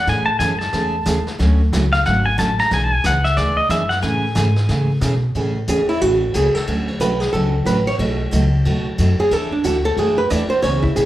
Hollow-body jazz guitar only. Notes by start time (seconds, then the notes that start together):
5.69 G#4
5.89 E4
6.02 F#4
6.35 G#4
6.55 A4
7.01 B4
7.20 G#4
7.33 A4
7.66 B4
7.87 C#5
9.20 G#4
9.33 A4
9.52 D4
9.65 F#4
9.85 A4
9.99 G#4
10.18 B4
10.30 D5
10.50 C5
10.62 C#5
10.83 E4
10.96 G#4